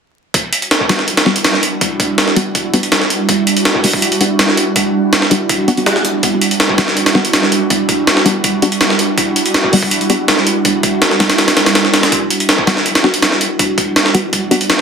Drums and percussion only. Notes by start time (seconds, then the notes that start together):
0.34 kick, closed hi-hat
0.53 closed hi-hat
0.62 closed hi-hat
0.71 snare, closed hi-hat
0.81 kick
0.89 snare, closed hi-hat
0.99 snare
1.08 closed hi-hat
1.17 snare, closed hi-hat
1.26 snare
1.36 closed hi-hat
1.44 snare, closed hi-hat
1.54 snare
1.63 closed hi-hat
1.81 kick, closed hi-hat
2.00 kick, closed hi-hat
2.18 snare, closed hi-hat
2.28 snare
2.36 closed hi-hat
2.55 kick, closed hi-hat
2.74 closed hi-hat
2.83 closed hi-hat
2.92 snare, closed hi-hat
3.02 snare
3.10 closed hi-hat
3.29 kick, closed hi-hat
3.47 closed hi-hat
3.57 closed hi-hat
3.65 snare, closed hi-hat
3.75 kick
3.84 open hi-hat
3.93 kick
4.02 closed hi-hat
4.12 closed hi-hat
4.21 closed hi-hat
4.39 snare, closed hi-hat
4.49 snare
4.57 closed hi-hat
4.76 kick, closed hi-hat
5.13 snare, closed hi-hat
5.22 snare
5.31 closed hi-hat
5.49 kick, closed hi-hat
5.68 closed hi-hat
5.77 closed hi-hat
5.86 snare, closed hi-hat
5.96 snare
6.05 closed hi-hat
6.23 kick, closed hi-hat
6.41 closed hi-hat
6.51 closed hi-hat
6.60 snare, closed hi-hat
6.69 kick
6.78 snare, closed hi-hat
6.88 snare
6.97 closed hi-hat
7.06 snare, closed hi-hat
7.15 snare
7.25 closed hi-hat
7.33 snare, closed hi-hat
7.43 snare
7.52 closed hi-hat
7.70 kick, closed hi-hat
7.89 kick, closed hi-hat
8.07 snare, closed hi-hat
8.17 snare
8.26 closed hi-hat
8.44 kick, closed hi-hat
8.62 closed hi-hat
8.72 closed hi-hat
8.81 snare, closed hi-hat
8.90 snare
8.99 closed hi-hat
9.18 kick, closed hi-hat
9.36 closed hi-hat
9.46 closed hi-hat
9.54 snare, closed hi-hat
9.64 kick
9.73 open hi-hat
9.83 kick
9.91 closed hi-hat
10.01 closed hi-hat
10.10 closed hi-hat
10.28 snare, closed hi-hat
10.38 snare
10.47 closed hi-hat
10.65 kick, closed hi-hat
10.83 kick, closed hi-hat
11.02 snare, closed hi-hat
11.11 snare
11.20 snare, closed hi-hat
11.30 snare, closed hi-hat
11.38 snare, closed hi-hat
11.48 snare, closed hi-hat
11.57 snare, closed hi-hat
11.66 snare, closed hi-hat
11.75 snare, closed hi-hat
11.85 snare
11.94 snare, closed hi-hat
12.03 snare, closed hi-hat
12.12 kick, closed hi-hat
12.30 closed hi-hat
12.40 closed hi-hat
12.49 snare, closed hi-hat
12.58 kick
12.67 snare, closed hi-hat
12.77 snare
12.86 closed hi-hat
12.95 snare, closed hi-hat
13.04 snare
13.14 closed hi-hat
13.22 snare, closed hi-hat
13.32 snare
13.41 closed hi-hat
13.59 kick, closed hi-hat
13.78 kick, closed hi-hat
13.96 snare, closed hi-hat
14.06 snare
14.15 closed hi-hat
14.33 kick, closed hi-hat
14.51 closed hi-hat
14.61 closed hi-hat
14.70 snare, closed hi-hat